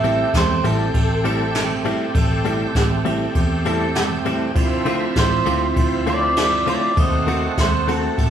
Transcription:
Already playing: fingered electric bass A1, tonewheel organ A3 C4 G4, horn section G4 A4, clean electric guitar E5
0.04 clean electric guitar A2 G3 C4 E4, ride
0.34 fingered electric bass E2, clean electric guitar C5, kick, snare, ride
0.64 fingered electric bass A1, clean electric guitar A2 G3 C4 E4 A4, ride
0.94 fingered electric bass A1, kick, ride
1.24 clean electric guitar A2 G3 C4 E4, horn section G4 A4, ride
1.55 snare, ride
1.85 clean electric guitar A2 G3 C4 E4, ride
2.15 fingered electric bass A1, horn section G4 A4, kick, ride
2.45 clean electric guitar A2 G3 C4 E4, ride
2.75 fingered electric bass A1, kick, snare, ride
3.05 clean electric guitar A2 G3 C4 E4, ride
3.35 fingered electric bass E2, kick, ride
3.65 clean electric guitar A2 G3 C4 E4, horn section G4 A4, ride
3.95 snare, ride
4.25 clean electric guitar A2 G3 C4 E4, ride
4.54 fingered electric bass D2, tonewheel organ F3 C4 E4, horn section D4 C5, kick, ride
4.85 clean electric guitar D3 A3 C4 F4, ride
5.16 fingered electric bass A1, clean electric guitar C5, kick, snare, ride
5.46 fingered electric bass D2, clean electric guitar D3 A3 C4 F4, ride
5.76 fingered electric bass D2, kick, ride
6.06 clean electric guitar D3 A3 C4 F4 D5, horn section D4 C5, ride
6.37 clean electric guitar D5, snare, ride
6.66 clean electric guitar D3 A3 C4 F4 D5, ride
6.95 fingered electric bass D#2, tonewheel organ A3 C4 F#4, horn section D#4 F#4 C5, kick, ride
7.00 clean electric guitar D#5
7.27 clean electric guitar D#3 A3 C4 F#4, ride
7.58 fingered electric bass D#2, clean electric guitar C5, kick, snare, ride
7.88 clean electric guitar D#3 A3 C4 F#4 A4, ride
8.18 fingered electric bass A2, kick, ride

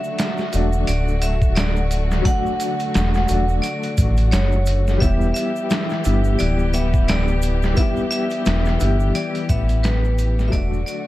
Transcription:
Already playing: string section D3 A3 F#4, upright piano F#3 A3 D4 F#4, vibraphone E5
0.04 shaker
0.19 snare, closed hi-hat, shaker
0.38 snare, shaker
0.52 analog synth bass E1, upright piano F#3 A3 D4, closed hi-hat, shaker
0.56 upright piano F#4
0.73 shaker
0.87 analog synth bass D1, vibraphone D5, closed hi-hat, shaker
1.08 shaker
1.22 vibraphone E5, closed hi-hat, shaker
1.42 kick, shaker
1.56 vibraphone D5, snare, closed hi-hat, shaker
1.76 shaker
1.91 closed hi-hat, shaker
2.11 snare, shaker
2.22 upright piano F#3 A3, vibraphone F#5, kick, closed hi-hat
2.27 upright piano D4, shaker
2.31 upright piano F#4
2.46 shaker
2.60 closed hi-hat, shaker
2.80 closed hi-hat, shaker
2.94 analog synth bass E1, snare, closed hi-hat, shaker
3.14 snare, shaker
3.28 analog synth bass E1, upright piano F#3 A3 D4, closed hi-hat, shaker
3.32 upright piano F#4
3.49 shaker
3.62 vibraphone D5, closed hi-hat, shaker
3.83 closed hi-hat, shaker
3.97 analog synth bass A1, kick, closed hi-hat, shaker
4.17 closed hi-hat, shaker
4.31 analog synth bass F#1, vibraphone C#5, snare, closed hi-hat, shaker
4.52 shaker
4.66 closed hi-hat, shaker
4.87 snare, shaker
4.98 string section E3 B3 G4, upright piano G3 B3, vibraphone E5, kick, closed hi-hat
5.02 analog synth bass E1, upright piano E4, shaker
5.06 upright piano G4
5.21 shaker
5.34 vibraphone E5, closed hi-hat, shaker
5.56 shaker
5.70 clean electric guitar E3, snare, closed hi-hat, shaker
5.89 snare, shaker
6.04 analog synth bass G1, clean electric guitar D3, upright piano G3 B3 E4, closed hi-hat, shaker
6.08 upright piano G4
6.24 shaker
6.39 analog synth bass D1, clean electric guitar E3, vibraphone D5, closed hi-hat, shaker
6.59 shaker
6.73 clean electric guitar B3, vibraphone E5, closed hi-hat, shaker
6.93 kick, shaker
7.08 vibraphone D5, snare, closed hi-hat, shaker
7.28 shaker
7.42 closed hi-hat, shaker
7.62 snare, shaker
7.74 upright piano G3 B3, vibraphone E5, kick, closed hi-hat, shaker
7.79 upright piano E4 G4
7.96 shaker
8.11 vibraphone E5, closed hi-hat, shaker
8.30 closed hi-hat, shaker
8.45 analog synth bass E1, clean electric guitar E3, snare, closed hi-hat, shaker
8.65 snare, shaker
8.78 analog synth bass G1, clean electric guitar D3, upright piano G3 B3 E4, closed hi-hat, shaker
8.83 upright piano G4
9.00 shaker
9.15 clean electric guitar E3, vibraphone D5, closed hi-hat, shaker
9.35 closed hi-hat, shaker
9.49 analog synth bass A1, clean electric guitar B3, vibraphone E5, kick, closed hi-hat, shaker
9.69 closed hi-hat, shaker
9.83 vibraphone B4, snare, closed hi-hat, shaker
10.04 shaker
10.18 closed hi-hat, shaker
10.39 snare, shaker
10.48 upright piano F#3 A3, vibraphone E5
10.52 analog synth bass E1, string section D3 A3 F#4, upright piano D4, vibraphone D5, kick, closed hi-hat, shaker
10.57 upright piano F#4
10.73 shaker
10.86 vibraphone D5, closed hi-hat, shaker

